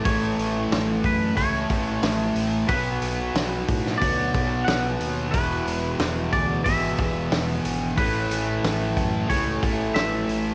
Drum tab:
HH |o-o-o-o-o-o-o-o-|o-o-o-o-o-o-o-o-|o-o-o-o-o-o-o-o-|o-o-o-o-o-o-o-o-|
SD |----o-------o---|----o--o----o---|----o-------o---|----o-------o---|
BD |o-----o-o-o-----|o-----o-o-o-----|o-----o-o-o-----|o-----o-o-o-----|